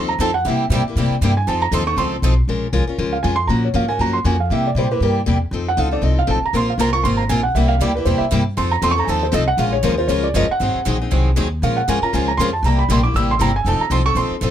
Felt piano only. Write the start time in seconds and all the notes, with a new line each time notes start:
0.09 A#5
0.21 A5
0.34 F#5
0.47 E5
1.37 G#5
1.48 A5
1.62 A#5
1.74 C6
1.87 C#6
1.98 C6
3.13 F5
3.23 G#5
3.36 C6
3.47 A#5
3.65 C#5
3.76 F5
3.89 G#5
4.01 A#5
4.13 C6
4.26 G#5
4.40 F5
4.52 E5
4.67 D5
4.79 C5
4.92 B4
5.03 A#4
5.68 F#5
5.79 F5
5.93 D5
6.04 D#5
6.19 F5
6.31 A5
6.45 A#5
6.57 C6
6.70 F5
6.81 A#5
6.93 C#6
7.04 C6
7.17 A#5
7.30 G#5
7.43 F#5
7.55 E5
7.68 F5
7.81 D5
7.95 B4
8.05 C5
8.18 E5
8.57 C6
8.71 A#5
8.83 C6
8.91 C#6
8.99 A#5
9.05 G#5
9.09 A5
9.23 C5
9.34 D#5
9.48 F#5
9.59 F5
9.73 C#5
9.85 A#4
9.98 C5
10.08 C#5
10.24 D5
10.36 D#5
10.51 F#5
11.63 F5
11.77 F#5
11.89 G#5
12.03 A#5
12.14 G#5
12.28 A#5
12.37 C6
12.53 A5
12.66 A#5
12.79 B5
12.92 C6
13.03 D6
13.16 E6
13.31 C6
13.41 A#5
13.56 G#5
13.67 A5
13.81 A#5
13.92 C6
14.06 C#6
14.17 C6